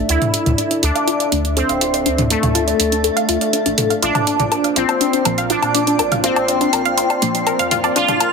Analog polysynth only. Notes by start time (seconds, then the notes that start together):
0.09 E4
0.83 D4
1.57 C4
2.30 A3
4.02 D4
4.76 C4
5.50 D4
6.24 C4
7.96 F4